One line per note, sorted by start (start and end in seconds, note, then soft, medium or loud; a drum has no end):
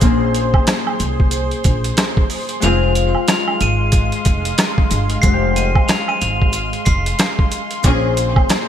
0.00 0.51 A#1 loud
0.00 2.68 A#2 medium
0.00 3.24 A#3 medium
0.00 2.62 C4 medium
0.00 2.59 G#4 medium
0.00 2.59 C5 medium
0.00 2.59 C6 medium
0.00 kick loud
0.00 closed hi-hat medium
0.00 maracas medium
0.04 2.69 C#4 medium
0.04 2.60 G#4 loud
0.34 closed hi-hat medium
0.34 maracas medium
0.54 kick loud
0.54 high woodblock medium
0.67 cross-stick loud
0.67 snare loud
0.67 closed hi-hat medium
0.67 maracas medium
0.87 high woodblock medium
1.00 1.49 C2 medium
1.00 closed hi-hat medium
1.00 maracas medium
1.20 kick medium
1.31 closed hi-hat medium
1.31 maracas medium
1.51 closed hi-hat soft
1.64 1.90 A#1 medium
1.64 kick medium
1.64 closed hi-hat medium
1.64 maracas medium
1.84 closed hi-hat medium
1.97 cross-stick medium
1.97 snare loud
1.97 closed hi-hat medium
1.97 maracas medium
2.17 kick loud
2.30 open hi-hat medium
2.30 maracas medium
2.49 closed hi-hat medium
2.60 3.12 F1 loud
2.60 2.90 F3 loud
2.60 5.21 G#3 medium
2.60 7.80 G#3 medium
2.60 2.90 C4 loud
2.60 5.24 C4 medium
2.60 2.90 G#4 loud
2.60 7.80 F5 medium
2.60 8.68 C6 medium
2.60 3.24 F7 loud
2.60 closed hi-hat medium
2.60 maracas medium
2.65 5.21 F4 medium
2.95 closed hi-hat medium
2.95 maracas medium
3.15 high woodblock medium
3.28 3.57 F7 medium
3.28 cross-stick loud
3.28 snare loud
3.28 closed hi-hat medium
3.28 maracas medium
3.48 high woodblock medium
3.61 4.10 G#1 loud
3.61 4.10 D#7 medium
3.61 closed hi-hat medium
3.61 maracas medium
3.92 kick loud
3.92 closed hi-hat medium
3.92 maracas medium
4.12 closed hi-hat soft
4.25 4.51 F1 medium
4.25 kick medium
4.25 closed hi-hat medium
4.25 maracas medium
4.45 closed hi-hat medium
4.58 cross-stick medium
4.58 snare loud
4.58 closed hi-hat medium
4.58 maracas medium
4.78 kick loud
4.91 5.16 G1 loud
4.91 closed hi-hat medium
4.91 maracas medium
5.10 closed hi-hat medium
5.22 5.73 F1 loud
5.22 7.89 G#3 medium
5.22 7.85 C4 medium
5.22 5.52 C7 loud
5.22 kick loud
5.22 closed hi-hat medium
5.22 maracas medium
5.27 5.33 F#4 medium
5.33 7.85 G4 medium
5.56 5.86 D#7 medium
5.56 closed hi-hat medium
5.56 maracas medium
5.75 kick loud
5.75 high woodblock medium
5.88 6.06 F7 medium
5.88 cross-stick loud
5.88 snare loud
5.88 closed hi-hat medium
5.88 maracas medium
6.08 6.21 D#7 medium
6.08 high woodblock medium
6.21 6.71 G#1 medium
6.21 6.83 F7 medium
6.21 closed hi-hat medium
6.21 maracas medium
6.42 kick medium
6.53 closed hi-hat medium
6.53 maracas medium
6.73 closed hi-hat soft
6.85 7.11 F1 medium
6.85 7.80 C7 medium
6.85 kick medium
6.85 closed hi-hat medium
6.85 maracas medium
7.06 closed hi-hat medium
7.19 cross-stick medium
7.19 snare loud
7.19 closed hi-hat medium
7.19 maracas medium
7.39 kick medium
7.52 closed hi-hat medium
7.52 maracas medium
7.71 closed hi-hat medium
7.83 8.34 A#1 loud
7.83 8.68 A#2 medium
7.83 8.12 F3 loud
7.83 8.68 A#3 medium
7.83 8.68 C4 medium
7.83 8.12 C#4 loud
7.83 8.68 C#4 medium
7.83 8.68 G#4 medium
7.83 8.12 G#4 loud
7.83 8.68 C5 medium
7.83 kick loud
7.83 closed hi-hat medium
7.83 maracas medium
7.88 8.68 G#4 medium
8.17 closed hi-hat medium
8.17 maracas medium
8.36 kick loud
8.36 high woodblock medium
8.49 cross-stick loud
8.49 snare loud
8.49 closed hi-hat medium
8.49 maracas medium